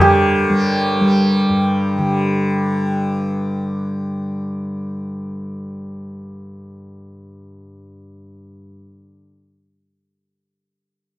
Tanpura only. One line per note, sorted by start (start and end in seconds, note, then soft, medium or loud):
0.00 1.48 G2 medium
0.00 1.98 D3 medium
0.00 0.50 G3 medium
0.50 1.01 G3 medium
1.01 7.55 G3 medium
1.49 8.64 G2 medium
1.98 9.13 D3 medium